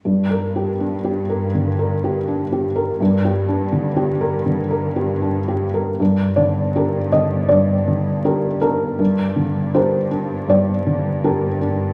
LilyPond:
<<
  \new Staff \with { instrumentName = "Felt piano" } { \time 4/4 \key g \minor \tempo 4 = 80 << { r1 | r1 | r8 d''4 ees''8 d''4. bes'8~ | bes'4 c''4 d''2 | } \\ { \tuplet 3/2 { g,8 bes'8 g'8 d'8 g'8 bes'8 d8 bes'8 g'8 d'8 g'8 bes'8 } | \tuplet 3/2 { g,8 g'8 d'8 d8 g'8 bes'8 d8 bes'8 g'8 d'8 g'8 bes'8 } | g,8 d8 <d' g' bes'>8 d8 g,8 d8 <d' g' bes'>8 d'8 | g,8 d8 <d' g' bes'>8 d'8 g,8 d8 <d' g' bes'>8 d'8 | } >> }
  \new Staff \with { instrumentName = "Cello section" } { \clef bass \time 4/4 \key g \minor g,1 | g,2.~ g,8. r16 | g,1 | g,1 | }
>>